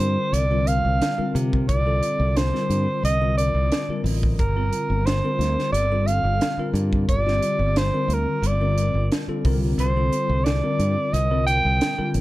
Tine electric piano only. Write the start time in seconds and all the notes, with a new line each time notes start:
Already playing: D3 G3 C4 F4 A#4
0.51 D3 G3 C4 F4 A#4
1.18 D3 G3 C4 F4 A#4
1.86 D3 G3 C4 F4 A4
2.53 D3 G3 C4 F4 A#4
3.21 D3 G3 C4 F4 A#4
3.89 D3 G3 C4 F4 A#4
4.56 D3 G3 C4 F4 A#4
5.24 D3 G3 C4 F4 A#4
5.91 D3 G3 C4 F4 A4
6.58 D3 G3 C4 F4 A#4
7.26 D3 G3 C4 F4 G4
7.94 D3 G3 C4 F4 A#4
8.60 D3 G3 C4 F4 A#4
9.28 D3 G3 C4 F4 A4
9.45 D3 G3 C4 F4 A#4
9.96 D3 G3 C4 F4 A4
10.63 D3 G3 C4 F4 A#4
11.30 D3 G3 C4 F4 A#4
11.98 D3 G3 C4 F4 A#4